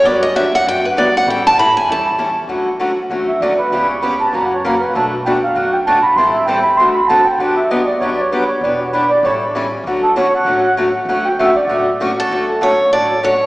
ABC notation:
X:1
M:4/4
L:1/16
Q:"Swing" 1/4=196
K:D
V:1 name="Accordion"
z16 | z16 | z8 z2 e2 d2 B2- | B2 c'2 b2 a2 (3^a2 f2 c2 ^A2 B2 |
A2 z2 g2 =f2 ^f2 g2 a2 b2 | =c'2 e2 g2 b2 c'2 b2 a2 g2 | f2 e2 _e2 d2 (3c2 d2 c2 B2 c2 | d2 F2 B2 d2 c2 z6 |
z2 A2 c2 f6 z4 | f2 g2 e2 d4 z4 F2- | F2 z2 A4 A4 A4 |]
V:2 name="Steel-string acoustic guitar"
d2 _e2 =e2 f2 g2 B2 d2 f2 | g2 a2 b2 ^g2 a6- a z | z16 | z16 |
z16 | z16 | z16 | z16 |
z16 | z12 z2 A2- | A2 z2 c4 d4 c4 |]
V:3 name="Steel-string acoustic guitar"
[D,F,B,DG]2 z2 [D,F,B,DG]2 z2 [D,F,B,DG]2 z2 [D,F,B,DG]2 z2 | [E,G,CEA]2 z2 [E,G,CEA]2 z2 [E,G,CEA]2 z2 [E,G,CEA]2 z2 | [D,F,A,CF]2 z2 [D,F,A,CF]2 z2 [D,F,A,CF]2 z2 [D,F,A,CF]2 z2 | [C,E,B,CG]2 z2 [C,E,B,CG]2 z2 [C,E,^A,CF]2 z2 [C,E,A,CF]2 z2 |
[B,,F,A,DF]2 z2 [B,,F,A,DF]2 z2 [B,,F,A,DF]2 z2 [B,,F,A,DF]2 z2 | [E,G,=CEA]2 z2 [E,G,CEA]2 z2 [D,A,CFA]2 z2 [D,A,CFA]2 z2 | [D,F,B,DG]2 z2 [D,F,B,DG]2 z2 [D,F,B,DG]2 z2 [D,F,B,DG]2 z2 | [E,B,DG]2 z2 [E,B,DG]2 z2 [E,G,CEA]2 z2 [E,G,CEA]2 z2 |
[D,F,A,CF]2 z2 [D,F,A,CF]2 z2 [D,F,A,CF]2 z2 [D,F,A,CF]2 z2 | [D,F,A,CF]2 z2 [D,F,A,CF]2 z2 [D,F,A,CF]2 z2 [D,F,A,CF]2 z2 | [D,F,A,CF]2 z2 [D,F,A,CF]2 z2 [D,F,A,CF]2 z2 [D,F,A,CF]2 z2 |]
V:4 name="Upright bass" clef=bass
G,,8 F,,4 G,,4 | A,,8 E,,8 | D,,8 E,,4 D,,4 | C,,8 F,,8 |
B,,,8 F,,8 | A,,,8 D,,8 | G,,,8 D,,8 | E,,,8 A,,,8 |
D,,8 A,,,8 | D,,8 A,,,8 | D,,8 A,,,8 |]